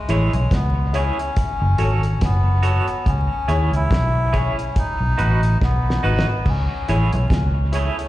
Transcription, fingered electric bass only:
0.09 A1
0.33 B1
0.51 C#2
1.62 F#1
1.78 G#1
2.22 F#1
3.07 C#2
3.48 D#2
3.72 C#2
3.91 B1
5.00 B1
5.19 A1
5.61 B1
6.04 G#1
6.46 C#2
6.89 A1
7.13 B1
7.30 C#2

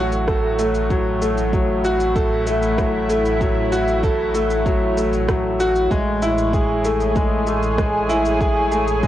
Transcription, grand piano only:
Already playing: F#3 A3 F#4 A4
0.28 A4
0.59 A3
0.91 F#3
1.22 A3
1.54 F#3
1.84 F#4
2.16 A4
2.47 A3
2.78 F#3
3.10 A3
3.41 F#3
3.72 F#4
4.04 A4
4.35 A3
4.66 F#3
4.97 A3
5.29 F#3
5.60 F#4
5.91 G#3
6.22 E4
6.54 G#4
6.85 A3
7.17 G#3
7.47 A3
7.79 G#3
8.09 E4
8.41 G#4
8.72 A3
9.03 G#3

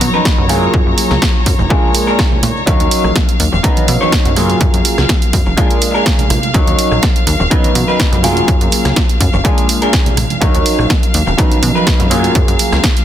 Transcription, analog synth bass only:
0.01 B2
0.38 F#2
0.74 F#2
0.87 F#2
1.11 C#2
1.46 F#2
1.59 F#1
2.43 A#2
2.67 D#2
2.80 D#2
3.04 A#1
3.40 D#2
3.53 D#1
3.88 B2
4.25 F#2
4.61 F#2
4.74 F#2
4.98 C#2
5.33 F#2
5.46 F#1
6.30 A#1
6.54 D#2
6.67 D#2
6.91 A#1
7.27 D#2
7.40 D#1
7.75 B2
8.12 F#2
8.48 F#2
8.61 F#2
8.85 C#2
9.20 F#2
9.34 F#1
10.17 A#1
10.41 D#2
10.55 D#2
10.79 A#1
11.14 D#2
11.27 D#1
11.63 B2
12.00 F#2
12.35 F#2
12.48 F#2
12.72 C#2

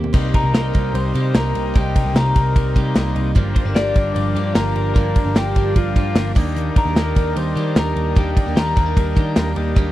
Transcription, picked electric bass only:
0.14 C2
0.44 C2
0.54 C2
0.75 C2
0.94 C2
1.15 C3
1.35 C2
1.55 C2
1.75 C2
2.05 C2
2.15 C2
2.36 C2
2.56 C2
2.76 C3
2.96 C2
3.15 C2
3.36 G1
3.65 G1
3.75 G1
3.96 G1
4.16 G1
4.35 G2
4.56 G1
4.76 G1
4.96 G1
5.26 G1
5.36 G1
5.56 G1
5.76 G1
5.96 G2
6.16 G1
6.36 D#2
6.86 D#2
6.96 D#2
7.16 D#2
7.36 D#2
7.56 D#3
7.76 D#2
7.96 D#2
8.17 D#2
8.47 D#2
8.56 D#2
8.77 D#2
8.97 D#2
9.17 D#3
9.36 D#2
9.56 D#2
9.76 D#2

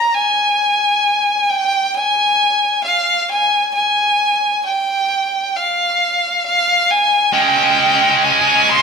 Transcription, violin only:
Already playing: A#5
0.14 G#5
1.50 G5
1.95 G#5
2.84 F5
3.31 G#5
3.75 G#5
4.66 G5
5.57 F5
6.46 F5
6.91 G#5
7.33 G5
8.24 G#5
8.70 C6

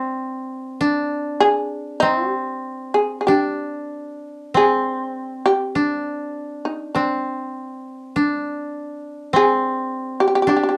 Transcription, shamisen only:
1.40 G#4
2.00 D#4
2.30 G4
2.94 G#4
3.21 G#4
3.27 G4
4.57 G#4
5.46 G4
6.65 D#4
6.95 D4
9.36 G#4
10.20 G4
10.28 G4
10.35 G4
10.42 G4
10.49 G4
10.57 G4
10.63 G4
10.69 G4

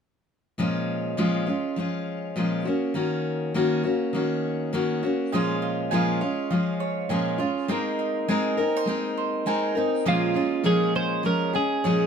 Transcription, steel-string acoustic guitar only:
0.58 A#2 F3 G#3 C#4 F4
1.17 A#2 F3 G#3 C#4 F4
1.47 G#3 C#4 F4
1.76 F3 G#3 C#4 F4
2.36 A#2 F3 G#3 C#4 F4
2.65 A#3 C#4 F#4
2.94 D#3 A#3 C#4 F#4
3.54 D#3 A#3 C#4 F#4
3.84 A#3 C#4 F#4
4.13 D#3 A#3 C#4 F#4
4.73 D#3 A#3 C#4 F#4
5.03 A#3 C#4 F#4
5.33 A#2 F3 G#3 C#4 F4
5.91 A#2 F3 G#3 C#4 F4
6.21 G#3 C#4 F4
6.50 F3 G#3 C#4 F4
7.09 A#2 F3 G#3 C#4 F4
7.38 G#3 C#4 F4
7.68 G#3 C4 D#4 A#4
8.28 G#3 C4 D#4 A#4
8.57 C4 D#4 A#4
8.86 G#3 C4 D#4 A#4
9.46 G#3 C4 D#4 A#4
9.75 C4 D#4 A#4
10.05 A#2 F3 G#3 C#4 G#4
10.34 G#3 C#4 G#4
10.63 A#2 F3 G#3 C#4 G#4
11.23 F3 G#3 C#4 G#4
11.53 G#3 C#4 G#4
11.84 A#2 F3 G#3 C#4 G#4

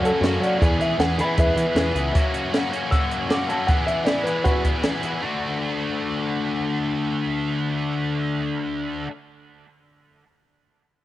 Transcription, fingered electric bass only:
0.03 F#3
0.21 F#2
0.40 F#3
0.61 E2
0.79 E3
0.99 E2
1.18 E3
1.38 E2
1.56 E3
1.75 E2
1.94 C#2

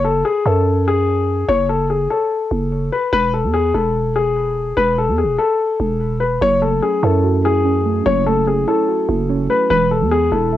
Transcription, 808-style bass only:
Already playing: F#1
0.46 F#2
1.48 F#1
2.51 F#1
3.13 E1
3.44 E2
3.74 E1
4.77 E1
5.08 E2
5.23 E1
5.80 E1
6.41 F#1
7.03 F#2
8.06 F#1
9.09 F#1
9.70 E1
10.01 E2
10.32 E1

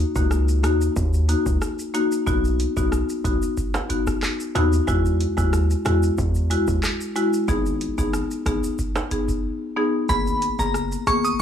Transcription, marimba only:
Already playing: A#3 D#4 F#4
0.16 A#3 D#4 F#4
0.63 A#3 D#4 F#4
1.29 A#3 D#4 F#4
1.94 A#3 D#4 F#4
2.27 B3 D#4 F#4
2.77 B3 D#4 F#4
3.24 B3 D#4 F#4
3.90 B3 D#4 F#4
4.55 B3 D#4 F#4
4.87 G#3 E4 F#4
5.37 G#3 E4 F#4
5.85 G#3 E4 F#4
6.50 G#3 E4 F#4
7.16 G#3 E4 F#4
7.48 B3 D#4 G#4
7.98 B3 D#4 G#4
8.46 B3 D#4 G#4
9.11 B3 D#4 G#4
9.76 B3 D#4 G#4
10.09 A#3 B3 G#4
10.59 A#3 B3 G#4
11.07 A#3 B3 G#4

